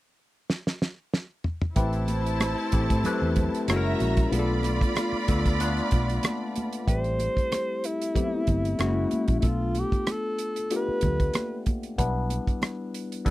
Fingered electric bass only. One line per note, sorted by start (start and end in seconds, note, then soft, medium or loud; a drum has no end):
1.76 2.54 A1 medium
2.73 2.87 A1 medium
2.90 3.02 A2 medium
3.05 muted fingered electric bass stroke soft
3.22 3.47 E2 medium
3.68 3.94 F#1 medium
4.00 4.26 A#1 medium
4.32 4.83 B1 loud
5.12 muted fingered electric bass stroke soft
5.29 5.79 D2 medium
5.92 6.18 B1 medium
6.88 7.27 A1 medium
7.37 muted fingered electric bass stroke soft
8.48 8.73 G1 medium
8.79 9.05 F#1 medium
9.29 9.40 A#1 medium
9.43 9.82 B1 medium
9.92 muted fingered electric bass stroke soft
10.88 muted fingered electric bass stroke soft
11.03 11.28 D2 medium
11.98 12.38 B1 loud
12.47 muted fingered electric bass stroke soft